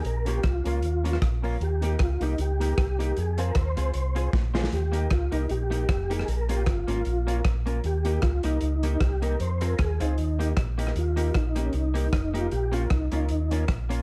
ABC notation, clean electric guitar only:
X:1
M:4/4
L:1/8
Q:"Swing" 1/4=154
K:Ebmix
V:1 name="Clean electric guitar"
z [B,DF] z [B,DF] z [B,DF] z [B,DF] | z [B,EG] z [B,EG] z [B,EG] z [B,EG] | z [CFA] z [CFA] z [CFA] z [CFA] | z [B,EG] z [B,EG] z [B,EG] z [B,EG] |
z [B,DF] z [B,DF] z [B,DF] z [B,DF] | z [B,EG] z [B,EG] z [B,EG] z [B,EG] | z [CFA] z [CFA] z [B,EG] z [B,EG] | z [B,EG] z [B,EG] z [B,EG] z [B,EG] |
z [B,DF] z [B,DF] z [B,DF] z [B,DF] |]